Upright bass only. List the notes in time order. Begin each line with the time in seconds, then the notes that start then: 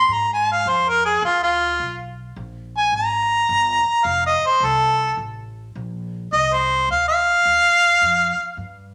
0.08 G#2
0.65 F2
1.22 D2
1.80 B1
2.36 A#1
2.92 G#1
3.49 G1
3.85 muted upright bass stroke
4.05 F1
4.42 muted upright bass stroke
4.60 C2
5.17 A1
5.75 A#1
6.32 C2
6.88 D2
7.45 D#2
8.02 F2
8.37 muted upright bass stroke
8.57 G2